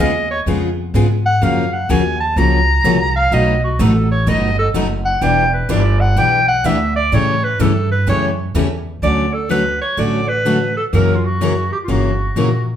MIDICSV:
0, 0, Header, 1, 5, 480
1, 0, Start_track
1, 0, Key_signature, 2, "major"
1, 0, Tempo, 475813
1, 1432, Time_signature, 4, 2, 24, 8
1, 12875, End_track
2, 0, Start_track
2, 0, Title_t, "Clarinet"
2, 0, Program_c, 0, 71
2, 1, Note_on_c, 0, 75, 87
2, 302, Note_off_c, 0, 75, 0
2, 311, Note_on_c, 0, 73, 82
2, 411, Note_off_c, 0, 73, 0
2, 1270, Note_on_c, 0, 78, 104
2, 1439, Note_on_c, 0, 77, 88
2, 1455, Note_off_c, 0, 78, 0
2, 1742, Note_on_c, 0, 78, 82
2, 1758, Note_off_c, 0, 77, 0
2, 1923, Note_on_c, 0, 80, 96
2, 1938, Note_off_c, 0, 78, 0
2, 2216, Note_off_c, 0, 80, 0
2, 2222, Note_on_c, 0, 81, 91
2, 2395, Note_on_c, 0, 82, 114
2, 2410, Note_off_c, 0, 81, 0
2, 3179, Note_off_c, 0, 82, 0
2, 3186, Note_on_c, 0, 77, 104
2, 3364, Note_on_c, 0, 75, 88
2, 3380, Note_off_c, 0, 77, 0
2, 3664, Note_off_c, 0, 75, 0
2, 3672, Note_on_c, 0, 66, 66
2, 3847, Note_on_c, 0, 69, 81
2, 3862, Note_off_c, 0, 66, 0
2, 4145, Note_off_c, 0, 69, 0
2, 4152, Note_on_c, 0, 73, 91
2, 4324, Note_on_c, 0, 75, 99
2, 4339, Note_off_c, 0, 73, 0
2, 4623, Note_off_c, 0, 75, 0
2, 4630, Note_on_c, 0, 69, 99
2, 4731, Note_off_c, 0, 69, 0
2, 5096, Note_on_c, 0, 78, 100
2, 5266, Note_on_c, 0, 79, 103
2, 5281, Note_off_c, 0, 78, 0
2, 5574, Note_off_c, 0, 79, 0
2, 5584, Note_on_c, 0, 71, 76
2, 5759, Note_on_c, 0, 74, 97
2, 5774, Note_off_c, 0, 71, 0
2, 6057, Note_on_c, 0, 78, 99
2, 6072, Note_off_c, 0, 74, 0
2, 6240, Note_on_c, 0, 79, 117
2, 6255, Note_off_c, 0, 78, 0
2, 6533, Note_off_c, 0, 79, 0
2, 6539, Note_on_c, 0, 78, 112
2, 6717, Note_on_c, 0, 76, 96
2, 6732, Note_off_c, 0, 78, 0
2, 7015, Note_off_c, 0, 76, 0
2, 7021, Note_on_c, 0, 74, 102
2, 7199, Note_on_c, 0, 73, 97
2, 7214, Note_off_c, 0, 74, 0
2, 7510, Note_on_c, 0, 71, 95
2, 7525, Note_off_c, 0, 73, 0
2, 7679, Note_on_c, 0, 69, 86
2, 7694, Note_off_c, 0, 71, 0
2, 7978, Note_off_c, 0, 69, 0
2, 7986, Note_on_c, 0, 71, 89
2, 8142, Note_off_c, 0, 71, 0
2, 8168, Note_on_c, 0, 73, 94
2, 8345, Note_off_c, 0, 73, 0
2, 9115, Note_on_c, 0, 74, 104
2, 9418, Note_on_c, 0, 69, 83
2, 9433, Note_off_c, 0, 74, 0
2, 9581, Note_off_c, 0, 69, 0
2, 9588, Note_on_c, 0, 71, 94
2, 9871, Note_off_c, 0, 71, 0
2, 9901, Note_on_c, 0, 73, 86
2, 10076, Note_on_c, 0, 74, 100
2, 10091, Note_off_c, 0, 73, 0
2, 10374, Note_on_c, 0, 71, 102
2, 10389, Note_off_c, 0, 74, 0
2, 10854, Note_off_c, 0, 71, 0
2, 10865, Note_on_c, 0, 69, 83
2, 10941, Note_off_c, 0, 69, 0
2, 11040, Note_on_c, 0, 70, 82
2, 11250, Note_on_c, 0, 65, 63
2, 11265, Note_off_c, 0, 70, 0
2, 11348, Note_on_c, 0, 66, 86
2, 11363, Note_off_c, 0, 65, 0
2, 11821, Note_off_c, 0, 66, 0
2, 11829, Note_on_c, 0, 67, 72
2, 11881, Note_off_c, 0, 67, 0
2, 11948, Note_on_c, 0, 65, 53
2, 12017, Note_on_c, 0, 66, 81
2, 12032, Note_off_c, 0, 65, 0
2, 12790, Note_off_c, 0, 66, 0
2, 12875, End_track
3, 0, Start_track
3, 0, Title_t, "Steel-string acoustic guitar"
3, 0, Program_c, 1, 25
3, 0, Note_on_c, 1, 49, 79
3, 0, Note_on_c, 1, 56, 83
3, 0, Note_on_c, 1, 59, 92
3, 2, Note_on_c, 1, 65, 87
3, 4, Note_on_c, 1, 68, 100
3, 105, Note_off_c, 1, 49, 0
3, 108, Note_off_c, 1, 56, 0
3, 108, Note_off_c, 1, 59, 0
3, 111, Note_off_c, 1, 65, 0
3, 112, Note_off_c, 1, 68, 0
3, 476, Note_on_c, 1, 49, 62
3, 478, Note_on_c, 1, 56, 66
3, 481, Note_on_c, 1, 59, 75
3, 484, Note_on_c, 1, 65, 81
3, 486, Note_on_c, 1, 68, 85
3, 690, Note_off_c, 1, 49, 0
3, 692, Note_off_c, 1, 56, 0
3, 693, Note_off_c, 1, 59, 0
3, 695, Note_off_c, 1, 65, 0
3, 695, Note_off_c, 1, 68, 0
3, 956, Note_on_c, 1, 49, 75
3, 961, Note_on_c, 1, 56, 81
3, 962, Note_on_c, 1, 59, 86
3, 966, Note_on_c, 1, 65, 97
3, 967, Note_on_c, 1, 68, 84
3, 1068, Note_off_c, 1, 49, 0
3, 1071, Note_off_c, 1, 56, 0
3, 1072, Note_off_c, 1, 59, 0
3, 1074, Note_off_c, 1, 65, 0
3, 1074, Note_off_c, 1, 68, 0
3, 1439, Note_on_c, 1, 54, 62
3, 1442, Note_on_c, 1, 61, 73
3, 1443, Note_on_c, 1, 58, 69
3, 1445, Note_on_c, 1, 65, 68
3, 1448, Note_on_c, 1, 70, 71
3, 1652, Note_off_c, 1, 54, 0
3, 1654, Note_off_c, 1, 58, 0
3, 1654, Note_off_c, 1, 61, 0
3, 1655, Note_off_c, 1, 65, 0
3, 1657, Note_off_c, 1, 70, 0
3, 1914, Note_on_c, 1, 54, 82
3, 1916, Note_on_c, 1, 58, 86
3, 1921, Note_on_c, 1, 61, 88
3, 1924, Note_on_c, 1, 65, 91
3, 1925, Note_on_c, 1, 70, 90
3, 2028, Note_off_c, 1, 54, 0
3, 2029, Note_off_c, 1, 58, 0
3, 2031, Note_off_c, 1, 61, 0
3, 2033, Note_off_c, 1, 65, 0
3, 2033, Note_off_c, 1, 70, 0
3, 2393, Note_on_c, 1, 54, 68
3, 2397, Note_on_c, 1, 58, 68
3, 2400, Note_on_c, 1, 61, 71
3, 2403, Note_on_c, 1, 65, 70
3, 2404, Note_on_c, 1, 70, 69
3, 2609, Note_off_c, 1, 54, 0
3, 2611, Note_off_c, 1, 58, 0
3, 2613, Note_off_c, 1, 61, 0
3, 2615, Note_off_c, 1, 65, 0
3, 2615, Note_off_c, 1, 70, 0
3, 2870, Note_on_c, 1, 54, 84
3, 2874, Note_on_c, 1, 58, 93
3, 2875, Note_on_c, 1, 61, 97
3, 2879, Note_on_c, 1, 65, 98
3, 2879, Note_on_c, 1, 70, 93
3, 2986, Note_off_c, 1, 54, 0
3, 2988, Note_off_c, 1, 58, 0
3, 2989, Note_off_c, 1, 61, 0
3, 2990, Note_off_c, 1, 65, 0
3, 2990, Note_off_c, 1, 70, 0
3, 3349, Note_on_c, 1, 47, 68
3, 3350, Note_on_c, 1, 54, 69
3, 3352, Note_on_c, 1, 63, 72
3, 3353, Note_on_c, 1, 57, 70
3, 3355, Note_on_c, 1, 66, 77
3, 3357, Note_on_c, 1, 71, 76
3, 3567, Note_off_c, 1, 47, 0
3, 3568, Note_off_c, 1, 54, 0
3, 3569, Note_off_c, 1, 57, 0
3, 3569, Note_off_c, 1, 63, 0
3, 3570, Note_off_c, 1, 66, 0
3, 3571, Note_off_c, 1, 71, 0
3, 3826, Note_on_c, 1, 47, 88
3, 3830, Note_on_c, 1, 54, 96
3, 3832, Note_on_c, 1, 57, 84
3, 3833, Note_on_c, 1, 66, 98
3, 3834, Note_on_c, 1, 63, 91
3, 3839, Note_on_c, 1, 71, 108
3, 3944, Note_off_c, 1, 47, 0
3, 3946, Note_off_c, 1, 54, 0
3, 3947, Note_off_c, 1, 57, 0
3, 3947, Note_off_c, 1, 66, 0
3, 3948, Note_off_c, 1, 63, 0
3, 3950, Note_off_c, 1, 71, 0
3, 4306, Note_on_c, 1, 47, 69
3, 4307, Note_on_c, 1, 54, 66
3, 4309, Note_on_c, 1, 57, 73
3, 4309, Note_on_c, 1, 63, 82
3, 4314, Note_on_c, 1, 66, 72
3, 4318, Note_on_c, 1, 71, 84
3, 4525, Note_off_c, 1, 47, 0
3, 4526, Note_off_c, 1, 54, 0
3, 4527, Note_off_c, 1, 57, 0
3, 4527, Note_off_c, 1, 63, 0
3, 4530, Note_off_c, 1, 66, 0
3, 4532, Note_off_c, 1, 71, 0
3, 4786, Note_on_c, 1, 47, 77
3, 4787, Note_on_c, 1, 54, 77
3, 4790, Note_on_c, 1, 57, 89
3, 4793, Note_on_c, 1, 63, 98
3, 4794, Note_on_c, 1, 71, 92
3, 4798, Note_on_c, 1, 66, 92
3, 4903, Note_off_c, 1, 47, 0
3, 4904, Note_off_c, 1, 54, 0
3, 4905, Note_off_c, 1, 57, 0
3, 4907, Note_off_c, 1, 63, 0
3, 4907, Note_off_c, 1, 71, 0
3, 4909, Note_off_c, 1, 66, 0
3, 5261, Note_on_c, 1, 52, 73
3, 5264, Note_on_c, 1, 55, 77
3, 5267, Note_on_c, 1, 62, 73
3, 5267, Note_on_c, 1, 64, 78
3, 5269, Note_on_c, 1, 71, 72
3, 5482, Note_off_c, 1, 52, 0
3, 5484, Note_off_c, 1, 55, 0
3, 5485, Note_off_c, 1, 62, 0
3, 5485, Note_off_c, 1, 64, 0
3, 5486, Note_off_c, 1, 71, 0
3, 5738, Note_on_c, 1, 52, 82
3, 5740, Note_on_c, 1, 55, 98
3, 5742, Note_on_c, 1, 62, 94
3, 5745, Note_on_c, 1, 64, 95
3, 5747, Note_on_c, 1, 71, 102
3, 5859, Note_off_c, 1, 52, 0
3, 5860, Note_off_c, 1, 55, 0
3, 5861, Note_off_c, 1, 62, 0
3, 5862, Note_off_c, 1, 64, 0
3, 5863, Note_off_c, 1, 71, 0
3, 6220, Note_on_c, 1, 52, 76
3, 6221, Note_on_c, 1, 55, 75
3, 6226, Note_on_c, 1, 62, 79
3, 6228, Note_on_c, 1, 64, 74
3, 6229, Note_on_c, 1, 71, 81
3, 6441, Note_off_c, 1, 52, 0
3, 6441, Note_off_c, 1, 55, 0
3, 6444, Note_off_c, 1, 62, 0
3, 6445, Note_off_c, 1, 64, 0
3, 6446, Note_off_c, 1, 71, 0
3, 6701, Note_on_c, 1, 52, 92
3, 6710, Note_on_c, 1, 55, 80
3, 6711, Note_on_c, 1, 64, 89
3, 6712, Note_on_c, 1, 62, 92
3, 6715, Note_on_c, 1, 71, 93
3, 6819, Note_off_c, 1, 52, 0
3, 6824, Note_off_c, 1, 55, 0
3, 6824, Note_off_c, 1, 64, 0
3, 6825, Note_off_c, 1, 62, 0
3, 6827, Note_off_c, 1, 71, 0
3, 7181, Note_on_c, 1, 52, 66
3, 7184, Note_on_c, 1, 61, 70
3, 7186, Note_on_c, 1, 55, 74
3, 7191, Note_on_c, 1, 64, 76
3, 7191, Note_on_c, 1, 69, 76
3, 7401, Note_off_c, 1, 52, 0
3, 7402, Note_off_c, 1, 61, 0
3, 7403, Note_off_c, 1, 55, 0
3, 7406, Note_off_c, 1, 64, 0
3, 7406, Note_off_c, 1, 69, 0
3, 7663, Note_on_c, 1, 52, 95
3, 7665, Note_on_c, 1, 55, 90
3, 7667, Note_on_c, 1, 61, 94
3, 7668, Note_on_c, 1, 64, 104
3, 7671, Note_on_c, 1, 69, 93
3, 7780, Note_off_c, 1, 52, 0
3, 7781, Note_off_c, 1, 55, 0
3, 7782, Note_off_c, 1, 61, 0
3, 7782, Note_off_c, 1, 64, 0
3, 7784, Note_off_c, 1, 69, 0
3, 8137, Note_on_c, 1, 52, 68
3, 8142, Note_on_c, 1, 55, 83
3, 8146, Note_on_c, 1, 61, 82
3, 8148, Note_on_c, 1, 64, 82
3, 8150, Note_on_c, 1, 69, 79
3, 8358, Note_off_c, 1, 52, 0
3, 8361, Note_off_c, 1, 55, 0
3, 8363, Note_off_c, 1, 61, 0
3, 8364, Note_off_c, 1, 64, 0
3, 8365, Note_off_c, 1, 69, 0
3, 8624, Note_on_c, 1, 55, 95
3, 8625, Note_on_c, 1, 52, 84
3, 8631, Note_on_c, 1, 64, 102
3, 8633, Note_on_c, 1, 69, 88
3, 8634, Note_on_c, 1, 61, 98
3, 8740, Note_off_c, 1, 52, 0
3, 8740, Note_off_c, 1, 55, 0
3, 8743, Note_off_c, 1, 64, 0
3, 8744, Note_off_c, 1, 69, 0
3, 8745, Note_off_c, 1, 61, 0
3, 9108, Note_on_c, 1, 50, 71
3, 9111, Note_on_c, 1, 57, 70
3, 9116, Note_on_c, 1, 61, 67
3, 9117, Note_on_c, 1, 66, 65
3, 9118, Note_on_c, 1, 69, 69
3, 9324, Note_off_c, 1, 50, 0
3, 9325, Note_off_c, 1, 57, 0
3, 9327, Note_off_c, 1, 61, 0
3, 9328, Note_off_c, 1, 66, 0
3, 9328, Note_off_c, 1, 69, 0
3, 9594, Note_on_c, 1, 50, 83
3, 9596, Note_on_c, 1, 57, 82
3, 9597, Note_on_c, 1, 61, 86
3, 9600, Note_on_c, 1, 66, 84
3, 9604, Note_on_c, 1, 69, 86
3, 9705, Note_off_c, 1, 50, 0
3, 9706, Note_off_c, 1, 57, 0
3, 9706, Note_off_c, 1, 61, 0
3, 9708, Note_off_c, 1, 66, 0
3, 9710, Note_off_c, 1, 69, 0
3, 10060, Note_on_c, 1, 50, 66
3, 10061, Note_on_c, 1, 57, 61
3, 10064, Note_on_c, 1, 61, 72
3, 10067, Note_on_c, 1, 66, 77
3, 10073, Note_on_c, 1, 69, 76
3, 10280, Note_off_c, 1, 50, 0
3, 10280, Note_off_c, 1, 57, 0
3, 10282, Note_off_c, 1, 61, 0
3, 10284, Note_off_c, 1, 66, 0
3, 10287, Note_off_c, 1, 69, 0
3, 10550, Note_on_c, 1, 50, 82
3, 10553, Note_on_c, 1, 57, 84
3, 10556, Note_on_c, 1, 66, 84
3, 10558, Note_on_c, 1, 61, 84
3, 10558, Note_on_c, 1, 69, 87
3, 10663, Note_off_c, 1, 50, 0
3, 10665, Note_off_c, 1, 57, 0
3, 10666, Note_off_c, 1, 66, 0
3, 10667, Note_off_c, 1, 61, 0
3, 10667, Note_off_c, 1, 69, 0
3, 11031, Note_on_c, 1, 54, 71
3, 11038, Note_on_c, 1, 61, 68
3, 11041, Note_on_c, 1, 64, 70
3, 11042, Note_on_c, 1, 70, 74
3, 11246, Note_off_c, 1, 54, 0
3, 11249, Note_off_c, 1, 61, 0
3, 11251, Note_off_c, 1, 64, 0
3, 11252, Note_off_c, 1, 70, 0
3, 11514, Note_on_c, 1, 54, 82
3, 11519, Note_on_c, 1, 61, 81
3, 11525, Note_on_c, 1, 64, 95
3, 11528, Note_on_c, 1, 70, 101
3, 11626, Note_off_c, 1, 54, 0
3, 11628, Note_off_c, 1, 61, 0
3, 11631, Note_off_c, 1, 64, 0
3, 11633, Note_off_c, 1, 70, 0
3, 11989, Note_on_c, 1, 54, 69
3, 11997, Note_on_c, 1, 61, 77
3, 11997, Note_on_c, 1, 70, 71
3, 11998, Note_on_c, 1, 64, 66
3, 12206, Note_off_c, 1, 54, 0
3, 12210, Note_off_c, 1, 61, 0
3, 12210, Note_off_c, 1, 70, 0
3, 12211, Note_off_c, 1, 64, 0
3, 12471, Note_on_c, 1, 54, 73
3, 12477, Note_on_c, 1, 64, 89
3, 12478, Note_on_c, 1, 61, 81
3, 12484, Note_on_c, 1, 70, 88
3, 12585, Note_off_c, 1, 54, 0
3, 12588, Note_off_c, 1, 64, 0
3, 12589, Note_off_c, 1, 61, 0
3, 12592, Note_off_c, 1, 70, 0
3, 12875, End_track
4, 0, Start_track
4, 0, Title_t, "Steel-string acoustic guitar"
4, 0, Program_c, 2, 25
4, 1427, Note_on_c, 2, 49, 79
4, 1430, Note_on_c, 2, 53, 78
4, 1438, Note_on_c, 2, 66, 75
4, 1646, Note_off_c, 2, 49, 0
4, 1648, Note_off_c, 2, 53, 0
4, 1652, Note_off_c, 2, 66, 0
4, 1908, Note_on_c, 2, 49, 85
4, 1913, Note_on_c, 2, 53, 94
4, 1922, Note_on_c, 2, 66, 100
4, 2025, Note_off_c, 2, 49, 0
4, 2027, Note_off_c, 2, 53, 0
4, 2032, Note_off_c, 2, 66, 0
4, 2390, Note_on_c, 2, 49, 65
4, 2396, Note_on_c, 2, 53, 68
4, 2405, Note_on_c, 2, 66, 79
4, 2608, Note_off_c, 2, 49, 0
4, 2611, Note_off_c, 2, 53, 0
4, 2616, Note_off_c, 2, 66, 0
4, 2867, Note_on_c, 2, 49, 82
4, 2872, Note_on_c, 2, 53, 85
4, 2880, Note_on_c, 2, 66, 84
4, 2984, Note_off_c, 2, 49, 0
4, 2987, Note_off_c, 2, 53, 0
4, 2991, Note_off_c, 2, 66, 0
4, 5266, Note_on_c, 2, 59, 72
4, 5277, Note_on_c, 2, 67, 86
4, 5485, Note_off_c, 2, 59, 0
4, 5490, Note_off_c, 2, 67, 0
4, 5747, Note_on_c, 2, 59, 93
4, 5755, Note_on_c, 2, 67, 111
4, 5863, Note_off_c, 2, 59, 0
4, 5867, Note_off_c, 2, 67, 0
4, 6226, Note_on_c, 2, 59, 82
4, 6236, Note_on_c, 2, 67, 75
4, 6444, Note_off_c, 2, 59, 0
4, 6449, Note_off_c, 2, 67, 0
4, 6710, Note_on_c, 2, 59, 84
4, 6716, Note_on_c, 2, 67, 96
4, 6824, Note_off_c, 2, 59, 0
4, 6827, Note_off_c, 2, 67, 0
4, 7194, Note_on_c, 2, 49, 75
4, 7198, Note_on_c, 2, 57, 75
4, 7208, Note_on_c, 2, 67, 81
4, 7407, Note_off_c, 2, 49, 0
4, 7409, Note_off_c, 2, 57, 0
4, 7414, Note_off_c, 2, 67, 0
4, 7660, Note_on_c, 2, 49, 83
4, 7666, Note_on_c, 2, 57, 101
4, 7674, Note_on_c, 2, 67, 97
4, 7778, Note_off_c, 2, 49, 0
4, 7781, Note_off_c, 2, 57, 0
4, 7785, Note_off_c, 2, 67, 0
4, 8146, Note_on_c, 2, 49, 67
4, 8156, Note_on_c, 2, 57, 71
4, 8163, Note_on_c, 2, 67, 79
4, 8363, Note_off_c, 2, 49, 0
4, 8367, Note_off_c, 2, 57, 0
4, 8371, Note_off_c, 2, 67, 0
4, 8627, Note_on_c, 2, 49, 88
4, 8629, Note_on_c, 2, 57, 95
4, 8636, Note_on_c, 2, 67, 100
4, 8741, Note_off_c, 2, 49, 0
4, 8742, Note_off_c, 2, 57, 0
4, 8746, Note_off_c, 2, 67, 0
4, 9110, Note_on_c, 2, 54, 70
4, 9325, Note_off_c, 2, 54, 0
4, 9580, Note_on_c, 2, 54, 87
4, 9698, Note_off_c, 2, 54, 0
4, 10066, Note_on_c, 2, 54, 70
4, 10283, Note_off_c, 2, 54, 0
4, 10549, Note_on_c, 2, 54, 81
4, 10662, Note_off_c, 2, 54, 0
4, 11024, Note_on_c, 2, 52, 74
4, 11025, Note_on_c, 2, 49, 61
4, 11030, Note_on_c, 2, 58, 70
4, 11037, Note_on_c, 2, 66, 73
4, 11243, Note_off_c, 2, 49, 0
4, 11243, Note_off_c, 2, 52, 0
4, 11245, Note_off_c, 2, 58, 0
4, 11249, Note_off_c, 2, 66, 0
4, 11509, Note_on_c, 2, 49, 84
4, 11514, Note_on_c, 2, 52, 94
4, 11516, Note_on_c, 2, 58, 93
4, 11521, Note_on_c, 2, 66, 98
4, 11623, Note_off_c, 2, 49, 0
4, 11626, Note_off_c, 2, 52, 0
4, 11627, Note_off_c, 2, 58, 0
4, 11629, Note_off_c, 2, 66, 0
4, 11985, Note_on_c, 2, 49, 71
4, 11985, Note_on_c, 2, 52, 68
4, 11990, Note_on_c, 2, 58, 75
4, 11995, Note_on_c, 2, 66, 69
4, 12204, Note_off_c, 2, 49, 0
4, 12204, Note_off_c, 2, 52, 0
4, 12206, Note_off_c, 2, 58, 0
4, 12209, Note_off_c, 2, 66, 0
4, 12471, Note_on_c, 2, 49, 81
4, 12477, Note_on_c, 2, 52, 73
4, 12478, Note_on_c, 2, 58, 91
4, 12483, Note_on_c, 2, 66, 83
4, 12585, Note_off_c, 2, 49, 0
4, 12588, Note_off_c, 2, 52, 0
4, 12589, Note_off_c, 2, 58, 0
4, 12592, Note_off_c, 2, 66, 0
4, 12875, End_track
5, 0, Start_track
5, 0, Title_t, "Upright bass"
5, 0, Program_c, 3, 32
5, 0, Note_on_c, 3, 39, 90
5, 458, Note_off_c, 3, 39, 0
5, 467, Note_on_c, 3, 41, 83
5, 935, Note_off_c, 3, 41, 0
5, 947, Note_on_c, 3, 44, 88
5, 1415, Note_off_c, 3, 44, 0
5, 1427, Note_on_c, 3, 42, 81
5, 1896, Note_off_c, 3, 42, 0
5, 1913, Note_on_c, 3, 39, 96
5, 2378, Note_off_c, 3, 39, 0
5, 2383, Note_on_c, 3, 37, 92
5, 2853, Note_off_c, 3, 37, 0
5, 2868, Note_on_c, 3, 36, 86
5, 3336, Note_off_c, 3, 36, 0
5, 3343, Note_on_c, 3, 35, 90
5, 3813, Note_off_c, 3, 35, 0
5, 3825, Note_on_c, 3, 33, 98
5, 4294, Note_off_c, 3, 33, 0
5, 4302, Note_on_c, 3, 31, 86
5, 4772, Note_off_c, 3, 31, 0
5, 4784, Note_on_c, 3, 30, 87
5, 5253, Note_off_c, 3, 30, 0
5, 5260, Note_on_c, 3, 28, 87
5, 5730, Note_off_c, 3, 28, 0
5, 5737, Note_on_c, 3, 31, 91
5, 6209, Note_off_c, 3, 31, 0
5, 6217, Note_on_c, 3, 35, 79
5, 6688, Note_off_c, 3, 35, 0
5, 6702, Note_on_c, 3, 38, 92
5, 7170, Note_off_c, 3, 38, 0
5, 7185, Note_on_c, 3, 45, 90
5, 7652, Note_off_c, 3, 45, 0
5, 7664, Note_on_c, 3, 43, 99
5, 8131, Note_off_c, 3, 43, 0
5, 8142, Note_on_c, 3, 42, 94
5, 8610, Note_off_c, 3, 42, 0
5, 8620, Note_on_c, 3, 40, 91
5, 9088, Note_off_c, 3, 40, 0
5, 9099, Note_on_c, 3, 38, 84
5, 9870, Note_off_c, 3, 38, 0
5, 10061, Note_on_c, 3, 33, 76
5, 10832, Note_off_c, 3, 33, 0
5, 11025, Note_on_c, 3, 42, 91
5, 11795, Note_off_c, 3, 42, 0
5, 11986, Note_on_c, 3, 31, 78
5, 12396, Note_off_c, 3, 31, 0
5, 12467, Note_on_c, 3, 34, 75
5, 12875, Note_off_c, 3, 34, 0
5, 12875, End_track
0, 0, End_of_file